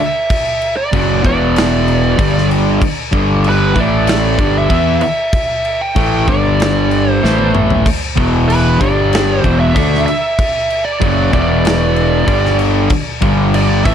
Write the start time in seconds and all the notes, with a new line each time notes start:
0.00 E5
0.30 kick, crash
0.62 crash
0.77 D5
0.93 F#1 F#2 C#3 F#3, kick, crash
1.23 E1 E2 B2 E3 D5, kick, crash
1.56 snare, crash
1.88 crash
2.18 G1 G2 D3 G3, kick, crash
2.38 snare
2.51 crash
2.82 kick, crash
3.12 G1 G2 D3 G3, kick, crash
3.44 crash
3.49 B4
3.75 A1 A2 E3 A3, kick, crash
3.80 D5
4.07 snare, crash
4.38 G1 G2 D3 G3, kick, crash
4.58 E5
4.70 E2 E3 B3 E4, kick, crash
5.01 E5, crash
5.33 kick, crash
5.65 crash
5.81 G5
5.96 A1 A2 E3 A3, kick, crash
6.28 G1 G2 D3 G3 D5, kick, crash
6.60 snare, crash
6.91 crash
7.12 C5
7.22 A1 A2 E3 A3, snare
7.38 high tom
7.55 mid tom
7.70 floor tom
7.86 kick, crash
8.16 E1 E2 B2 E3, kick, crash
8.48 B4, crash
8.80 G1 G2 D3 G3 D5, kick, crash
9.13 snare, crash
9.40 C5
9.44 E1 E2 B2 E3, kick, crash
9.60 E5
9.75 D2 D3 A3 D4, kick, crash
9.95 snare
10.06 E5, crash
10.39 kick, crash
10.70 crash
10.85 D5
11.00 F#1 F#2 C#3 F#3, kick, crash
11.32 E1 E2 B2 E3 D5, kick, crash
11.65 snare, crash
11.96 crash
12.27 G1 G2 D3 G3, kick, crash
12.46 snare
12.59 crash
12.90 kick, crash
13.21 G1 G2 D3 G3, kick, crash
13.54 D5, crash
13.85 A1 A2 E3 A3 E5, kick, crash